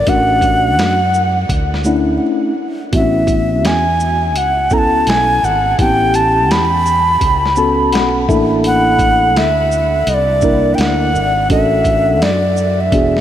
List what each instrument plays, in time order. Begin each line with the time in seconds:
Already playing: ocarina D5
0.07 fretless electric bass A1, tine electric piano A3 C#4 D4 F#4, ocarina F#5, kick, closed hi-hat
0.41 kick, closed hi-hat, shaker
0.79 fretless electric bass F#2, snare, closed hi-hat
1.14 shaker
1.49 fretless electric bass D2, kick, closed hi-hat
1.74 snare
1.84 tine electric piano A3 C#4 D4 E4, shaker
2.92 fretless electric bass A1, tine electric piano B3 C4 E4 F#4, ocarina E5, kick, closed hi-hat
2.99 tine electric piano C#4
3.27 kick, closed hi-hat, shaker
3.64 fretless electric bass E2, ocarina G#5, snare, closed hi-hat
4.00 shaker
4.36 fretless electric bass C#2, ocarina F#5, closed hi-hat
4.70 tine electric piano B3 C#4 E4 A4, ocarina A#5, kick, shaker
4.78 ocarina A5
5.07 fretless electric bass B1, ocarina G#5, snare, closed hi-hat
5.43 fretless electric bass G#1, ocarina F#5, shaker
5.79 fretless electric bass A1, tine electric piano B3 C4 E4 G4, ocarina G5, kick, closed hi-hat
5.86 tine electric piano C#4
6.14 ocarina A5, closed hi-hat, shaker
6.50 fretless electric bass E2, ocarina B5, snare, closed hi-hat
6.86 shaker
7.21 fretless electric bass C#2, kick, closed hi-hat
7.46 snare
7.56 tine electric piano B3 C#4 F#4 A4 A5, shaker
7.92 fretless electric bass B1, tine electric piano F#5, snare, closed hi-hat
8.28 fretless electric bass A1, tine electric piano A#3 D4 E4 A4 E5, kick, shaker
8.64 ocarina F#5, closed hi-hat
8.99 kick, closed hi-hat, shaker
9.36 fretless electric bass D2, ocarina E5, snare, closed hi-hat
9.72 shaker
10.07 fretless electric bass C2, ocarina D#5, closed hi-hat
10.14 ocarina D5
10.41 tine electric piano A#3 D4 E4 A#4, kick, shaker
10.75 fretless electric bass D2, ocarina G5, closed hi-hat
10.80 ocarina F#5, snare
11.14 fretless electric bass G#1, shaker
11.50 fretless electric bass A1, tine electric piano C#4 D4 F#4 A4, ocarina E5, kick, closed hi-hat
11.84 kick, closed hi-hat, shaker
12.21 fretless electric bass F#2, ocarina D5, snare, closed hi-hat
12.57 shaker
12.81 ocarina E5
12.92 fretless electric bass E1, tine electric piano B3 D4 F#4 G#4, kick, closed hi-hat
13.17 snare